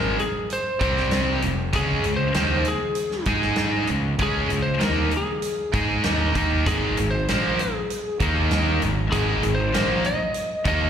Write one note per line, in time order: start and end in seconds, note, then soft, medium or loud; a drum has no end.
0.00 0.17 G#1 medium
0.00 0.19 G#2 medium
0.00 0.20 D#3 medium
0.00 0.20 G#3 medium
0.00 0.19 A#4 medium
0.19 0.48 G#4 medium
0.19 closed hi-hat soft
0.50 0.81 C5 medium
0.50 closed hi-hat medium
0.81 1.39 C2 medium
0.81 1.42 C3 medium
0.81 1.42 G3 medium
0.81 1.43 C4 medium
0.81 1.39 C5 medium
0.81 kick medium
0.81 closed hi-hat medium
0.97 snare soft
1.11 snare medium
1.11 closed hi-hat medium
1.42 1.72 F1 medium
1.42 1.68 F2 medium
1.42 1.68 C3 medium
1.42 closed hi-hat medium
1.73 2.02 C#2 medium
1.73 2.03 C#3 medium
1.73 2.04 G#3 medium
1.73 2.04 C#4 medium
1.73 2.13 G#4 medium
1.73 kick loud
1.73 closed hi-hat medium
2.04 2.33 C#2 medium
2.04 2.29 C#3 medium
2.04 2.30 G#3 medium
2.04 closed hi-hat medium
2.16 2.34 C5 medium
2.34 2.64 D#2 medium
2.34 2.65 D#3 medium
2.34 2.65 A#3 medium
2.34 2.66 D#4 medium
2.34 2.67 C5 medium
2.34 snare loud
2.34 closed hi-hat medium
2.65 3.25 G#4 medium
2.65 closed hi-hat medium
2.95 closed hi-hat medium
3.11 snare soft
3.25 3.85 G#2 medium
3.25 3.88 G#3 medium
3.25 3.89 D#4 medium
3.25 3.89 G#4 medium
3.25 kick medium
3.25 closed hi-hat medium
3.42 snare soft
3.56 snare medium
3.56 closed hi-hat medium
3.87 4.18 C#2 medium
3.87 4.14 C#3 medium
3.87 4.14 G#3 medium
3.87 closed hi-hat medium
4.19 4.48 C#2 medium
4.19 4.50 C#3 medium
4.19 4.50 G#3 medium
4.19 4.50 C#4 medium
4.19 kick loud
4.19 closed hi-hat medium
4.23 4.64 G#4 medium
4.50 4.80 C#2 medium
4.50 4.75 C#3 medium
4.50 4.76 G#3 medium
4.50 closed hi-hat medium
4.62 4.83 C5 medium
4.80 5.11 D#2 medium
4.80 5.12 D#3 medium
4.80 5.12 A#3 medium
4.80 5.12 D#4 loud
4.80 5.11 A#4 medium
4.80 snare loud
4.80 closed hi-hat medium
5.11 closed hi-hat medium
5.17 5.72 G#4 medium
5.42 closed hi-hat medium
5.74 6.02 G#2 medium
5.74 6.04 G#3 medium
5.74 6.04 D#4 medium
5.74 6.05 G#4 medium
5.74 kick medium
5.74 closed hi-hat medium
6.03 6.33 D#2 medium
6.03 6.35 D#3 medium
6.03 6.35 A#3 medium
6.03 6.35 D#4 medium
6.03 snare loud
6.03 closed hi-hat medium
6.35 6.64 D#2 medium
6.35 6.66 D#3 medium
6.35 6.66 A#3 medium
6.35 6.66 D#4 medium
6.35 kick loud
6.35 closed hi-hat medium
6.66 6.95 G#1 medium
6.66 6.97 G#2 medium
6.66 6.97 D#3 medium
6.66 6.97 G#3 medium
6.66 7.09 G#4 medium
6.66 kick loud
6.66 closed hi-hat medium
6.97 7.27 G#1 medium
6.97 7.22 G#2 medium
6.97 7.22 D#3 medium
6.97 closed hi-hat medium
7.11 7.28 C5 medium
7.28 7.58 A#1 medium
7.28 7.58 A#2 medium
7.28 7.58 F3 medium
7.28 7.59 A#3 loud
7.28 7.60 C5 medium
7.28 snare loud
7.28 closed hi-hat medium
7.59 8.17 G#4 medium
7.59 closed hi-hat medium
7.90 closed hi-hat medium
8.20 8.78 D#2 medium
8.20 8.81 D#3 medium
8.20 8.82 A#3 medium
8.20 8.82 D#4 medium
8.20 kick loud
8.20 closed hi-hat medium
8.51 snare medium
8.51 closed hi-hat medium
8.82 9.11 G#1 medium
8.82 9.07 G#2 medium
8.82 9.07 D#3 medium
8.82 closed hi-hat medium
9.12 9.41 G#1 medium
9.12 9.43 G#2 medium
9.12 9.43 D#3 medium
9.12 9.43 G#3 loud
9.12 9.54 G#4 medium
9.12 kick loud
9.12 closed hi-hat medium
9.43 9.73 G#1 medium
9.43 9.68 G#2 medium
9.43 9.68 D#3 medium
9.43 closed hi-hat medium
9.55 10.06 C5 medium
9.72 10.03 A#1 medium
9.72 10.03 A#2 medium
9.72 10.03 F3 medium
9.72 10.04 A#3 medium
9.72 snare loud
9.72 closed hi-hat medium
10.04 10.67 D#5 medium
10.04 closed hi-hat medium
10.34 closed hi-hat medium
10.65 10.90 D#2 medium
10.65 10.90 D#3 medium
10.65 10.90 A#3 medium
10.65 10.90 D#4 medium
10.65 10.90 D#5 medium
10.65 kick loud
10.65 closed hi-hat medium